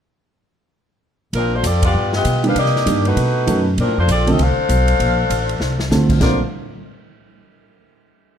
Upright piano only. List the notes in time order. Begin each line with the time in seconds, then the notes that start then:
2.43 D#3 G3 A#3 D4
2.86 D#3 G3 A#3 D4
3.46 D#3 F#3 A3 C#4
4.26 D3 F3 A3 C4
5.90 D3 F3 A3 C4
6.21 D3 F3 A3 C4